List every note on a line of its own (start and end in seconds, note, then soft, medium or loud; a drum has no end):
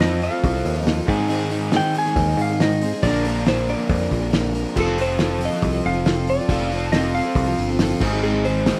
0.00 0.21 F2 medium
0.00 0.28 F2 loud
0.00 0.22 F3 medium
0.00 1.08 F3 medium
0.00 0.18 A3 medium
0.00 1.05 C4 medium
0.00 1.08 C4 loud
0.00 0.20 C4 medium
0.00 0.21 F4 medium
0.00 1.06 F4 medium
0.00 1.08 F4 loud
0.00 1.06 A4 medium
0.00 1.08 A4 loud
0.00 0.21 A4 medium
0.00 1.06 C5 medium
0.00 0.23 D#5 medium
0.00 snare loud
0.00 open hi-hat medium
0.19 0.32 A3 medium
0.19 0.31 C4 medium
0.19 open hi-hat medium
0.23 0.82 F5 loud
0.30 0.54 A3 soft
0.30 0.54 C4 soft
0.30 0.53 F4 medium
0.30 0.51 A4 medium
0.44 0.62 C2 loud
0.44 kick loud
0.44 open hi-hat medium
0.53 0.76 A3 soft
0.53 0.76 C4 soft
0.53 0.74 F4 medium
0.53 0.74 A4 medium
0.65 1.01 D#2 medium
0.65 open hi-hat medium
0.75 0.82 A3 soft
0.75 0.83 C4 medium
0.75 0.83 F4 medium
0.75 0.84 A4 medium
0.82 1.07 F2 medium
0.82 1.07 F3 loud
0.82 1.05 A3 medium
0.82 1.06 C4 loud
0.82 1.07 F4 loud
0.82 1.08 A4 loud
0.82 1.05 D#5 loud
0.87 snare loud
0.87 open hi-hat medium
1.05 1.80 G#2 loud
1.05 2.80 G#2 loud
1.05 1.18 G#3 medium
1.05 2.77 C4 medium
1.05 1.18 C4 medium
1.05 2.78 D#4 medium
1.05 1.17 D#4 medium
1.05 2.78 G#4 medium
1.05 1.16 G#4 medium
1.05 2.78 C5 medium
1.05 kick loud
1.09 2.81 D#3 loud
1.09 2.81 G#3 loud
1.09 open hi-hat medium
1.17 1.26 G#3 medium
1.17 1.27 C4 medium
1.17 1.28 D#4 medium
1.17 1.29 G#4 medium
1.27 1.51 G#2 medium
1.27 1.51 D#3 medium
1.27 1.48 G#3 loud
1.27 1.49 C4 medium
1.27 1.51 D#4 loud
1.27 1.52 G#4 loud
1.27 open hi-hat medium
1.49 1.72 G#3 medium
1.49 1.71 C4 medium
1.49 1.73 D#4 medium
1.49 1.73 G#4 medium
1.49 open hi-hat medium
1.72 1.94 G#2 medium
1.72 1.95 D#3 medium
1.72 1.92 G#3 medium
1.72 1.93 C4 medium
1.72 1.95 D#4 medium
1.72 1.96 G#4 medium
1.72 snare loud
1.72 open hi-hat medium
1.77 1.97 G5 loud
1.93 2.05 G#3 medium
1.93 2.06 C4 medium
1.93 2.05 D#4 medium
1.93 2.04 G#4 medium
1.93 open hi-hat medium
1.98 2.41 G#5 loud
2.06 2.29 G#3 soft
2.06 2.28 C4 soft
2.06 2.27 D#4 medium
2.06 2.26 G#4 medium
2.06 snare soft
2.16 2.34 D#2 loud
2.16 kick loud
2.16 open hi-hat medium
2.27 2.51 G#3 soft
2.27 2.51 C4 soft
2.27 2.50 D#4 medium
2.27 2.49 G#4 medium
2.37 2.91 G#2 medium
2.37 open hi-hat medium
2.42 2.62 F5 loud
2.50 2.61 G#3 soft
2.50 2.62 C4 soft
2.50 2.61 D#4 medium
2.50 2.60 G#4 medium
2.60 2.82 G#2 medium
2.60 2.83 D#3 medium
2.60 2.80 G#3 medium
2.60 2.82 C4 medium
2.60 2.83 D#4 medium
2.60 2.83 G#4 medium
2.60 3.03 D#5 medium
2.60 snare loud
2.60 open hi-hat medium
2.81 2.92 G#3 medium
2.81 3.03 C4 soft
2.81 2.93 C4 medium
2.81 3.03 D#4 soft
2.81 2.93 D#4 medium
2.81 3.04 G#4 soft
2.81 3.04 C5 medium
2.81 open hi-hat medium
2.86 2.92 G#4 medium
2.93 3.05 G#3 soft
2.93 3.05 C4 medium
2.93 3.04 D#4 medium
2.93 3.03 G#4 medium
3.03 3.74 A#1 medium
3.03 3.26 A#2 medium
3.03 3.26 D3 medium
3.03 3.23 F3 medium
3.03 3.25 A#3 medium
3.03 4.72 D4 medium
3.03 4.73 F4 medium
3.03 4.73 A#4 medium
3.03 3.43 D5 loud
3.03 4.73 D5 medium
3.03 kick loud
3.03 open hi-hat medium
3.07 3.26 D4 medium
3.07 3.27 A#4 medium
3.24 3.46 F3 medium
3.24 3.46 A#3 medium
3.24 3.46 D4 medium
3.24 3.47 A#4 medium
3.24 open hi-hat medium
3.46 3.68 A#2 medium
3.46 3.68 D3 medium
3.46 3.66 F3 medium
3.46 3.67 A#3 medium
3.46 3.68 D4 medium
3.46 3.69 A#4 medium
3.46 3.70 C5 medium
3.46 snare loud
3.46 open hi-hat medium
3.67 3.78 F3 medium
3.67 3.78 A#3 medium
3.67 3.77 D4 medium
3.67 3.75 A#4 medium
3.67 4.51 D5 medium
3.67 open hi-hat medium
3.77 4.01 F3 soft
3.77 4.00 A#3 medium
3.77 3.99 D4 medium
3.77 3.98 A#4 medium
3.89 4.07 F2 loud
3.89 kick loud
3.89 open hi-hat medium
3.99 4.23 F3 soft
3.99 4.21 A#3 soft
3.99 4.20 D4 medium
3.99 4.19 A#4 medium
4.11 4.65 A#1 medium
4.11 kick medium
4.11 open hi-hat medium
4.20 4.30 F3 medium
4.20 4.32 A#3 soft
4.20 4.31 D4 medium
4.20 4.32 A#4 medium
4.31 4.53 A#2 medium
4.31 4.54 D3 medium
4.31 4.50 F3 medium
4.31 4.52 A#3 loud
4.31 4.52 D4 medium
4.31 4.53 A#4 loud
4.31 snare loud
4.31 open hi-hat medium
4.51 4.64 F3 medium
4.51 4.65 A#3 medium
4.51 4.63 D4 medium
4.51 4.63 A#4 medium
4.51 open hi-hat medium
4.64 4.75 F3 soft
4.64 4.76 A#3 soft
4.64 4.75 D4 medium
4.64 4.75 A#4 medium
4.74 5.48 F1 medium
4.74 4.97 F2 medium
4.74 4.97 C3 medium
4.74 4.95 F3 medium
4.74 7.95 C4 medium
4.74 4.97 C4 medium
4.74 7.98 C4 medium
4.74 7.95 F4 medium
4.74 4.98 F4 medium
4.74 7.96 A4 medium
4.74 4.98 A4 medium
4.74 7.98 A4 medium
4.74 7.96 C5 medium
4.74 7.98 C5 medium
4.74 kick loud
4.74 crash loud
4.78 7.98 F4 medium
4.78 4.99 A4 medium
4.87 snare soft
4.96 5.18 F3 medium
4.96 5.17 C4 medium
4.96 5.18 F4 medium
4.96 5.18 A4 medium
4.96 open hi-hat medium
5.01 5.44 C5 medium
5.17 5.40 F2 medium
5.17 5.40 C3 medium
5.17 5.38 F3 medium
5.17 5.40 C4 medium
5.17 5.41 F4 medium
5.17 5.41 A4 medium
5.17 snare loud
5.17 open hi-hat medium
5.39 5.51 F3 medium
5.39 5.51 C4 medium
5.39 5.50 F4 medium
5.39 5.49 A4 medium
5.39 open hi-hat medium
5.45 5.86 D#5 loud
5.50 5.73 F3 soft
5.50 5.72 C4 soft
5.50 5.71 F4 medium
5.50 5.70 A4 medium
5.50 snare soft
5.62 5.80 C2 loud
5.62 kick loud
5.62 open hi-hat medium
5.71 5.96 F3 soft
5.71 5.95 C4 soft
5.71 5.94 F4 medium
5.71 5.93 A4 medium
5.85 6.39 F1 medium
5.85 6.30 F5 loud
5.85 open hi-hat medium
5.94 6.04 F3 soft
5.94 6.06 C4 soft
5.94 6.06 F4 medium
5.94 6.05 A4 medium
6.05 6.27 F2 medium
6.05 6.27 C3 medium
6.05 6.26 F3 medium
6.05 6.28 C4 medium
6.05 6.28 F4 medium
6.05 6.28 A4 medium
6.05 snare loud
6.05 open hi-hat medium
6.27 6.38 F3 medium
6.27 6.39 C4 medium
6.27 6.92 D5 loud
6.27 open hi-hat medium
6.38 6.50 C4 medium
6.38 6.50 F4 medium
6.38 6.49 A4 medium
6.43 6.50 F3 soft
6.49 7.20 F1 loud
6.49 6.71 F2 medium
6.49 6.71 C3 medium
6.49 6.70 F3 medium
6.49 6.71 C4 medium
6.49 6.72 F4 medium
6.49 6.72 A4 medium
6.49 kick loud
6.49 open hi-hat medium
6.61 snare soft
6.71 6.92 F3 medium
6.71 6.93 C4 medium
6.71 6.94 F4 medium
6.71 open hi-hat medium
6.92 7.15 F2 medium
6.92 7.15 C3 medium
6.92 7.13 F3 medium
6.92 7.14 C4 medium
6.92 7.15 A4 medium
6.92 7.15 D#5 medium
6.92 snare loud
6.92 open hi-hat medium
6.96 7.16 F4 medium
7.15 7.25 F3 medium
7.15 7.25 C4 medium
7.15 7.25 F4 medium
7.15 7.24 A4 medium
7.15 7.97 F5 loud
7.15 open hi-hat medium
7.25 7.48 C4 medium
7.25 7.47 F4 medium
7.25 7.46 A4 medium
7.29 7.49 F3 soft
7.35 7.54 C2 loud
7.35 kick loud
7.35 open hi-hat medium
7.48 7.70 F3 soft
7.48 7.70 C4 soft
7.48 7.69 F4 medium
7.48 7.68 A4 medium
7.57 7.94 G1 medium
7.57 open hi-hat medium
7.69 7.79 F3 medium
7.69 7.81 C4 medium
7.69 7.80 F4 medium
7.69 7.79 A4 medium
7.79 8.01 F2 loud
7.79 8.01 C3 loud
7.79 8.01 F3 loud
7.79 8.02 C4 loud
7.79 8.02 F4 loud
7.79 8.02 A4 loud
7.79 snare loud
7.79 open hi-hat medium
8.00 8.72 G#1 loud
8.00 8.80 G#2 loud
8.00 8.80 D#3 loud
8.00 8.12 G#3 medium
8.00 8.80 C4 medium
8.00 8.80 C4 loud
8.00 8.80 D#4 medium
8.00 8.80 D#4 loud
8.00 8.80 G#4 medium
8.00 8.80 G#4 loud
8.00 8.80 C5 medium
8.00 kick loud
8.00 crash loud
8.07 8.11 G#4 medium
8.13 8.24 G#3 medium
8.13 8.24 C4 medium
8.13 8.23 D#4 medium
8.13 8.23 G#4 medium
8.23 8.44 G#2 medium
8.23 8.45 D#3 medium
8.23 8.44 G#3 medium
8.23 8.45 C4 medium
8.23 8.45 D#4 medium
8.23 8.45 G#4 medium
8.23 8.46 G#4 medium
8.33 snare soft
8.44 8.66 G#3 medium
8.44 8.66 C4 medium
8.44 8.80 C5 loud
8.44 open hi-hat medium
8.66 8.80 G#2 medium
8.66 8.80 D#3 medium
8.66 8.80 G#3 medium
8.66 8.80 C4 medium
8.66 8.80 D#4 medium
8.66 8.80 G#4 medium
8.66 snare loud
8.66 open hi-hat medium